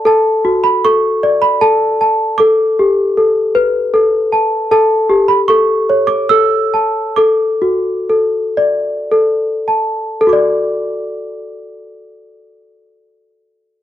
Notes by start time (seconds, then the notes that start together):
0.05 A4 A5
0.45 F#4
0.64 B5
0.85 A4 C#6
1.23 D5
1.42 B5
1.61 A4 A5
2.01 A5
2.38 A4 D6
2.79 G4
3.17 A4
3.55 B4
3.94 A4
4.32 A5
4.71 A4 A5
5.10 G4
5.28 B5
5.48 A4 C#6
5.90 C#5
6.07 D6
6.29 A4 E6
6.74 A5
7.16 A4 D6
7.62 F#4
8.10 A4
8.57 D5
9.12 A4
9.68 A5
10.21 A4
10.27 F#4 D6
10.33 D5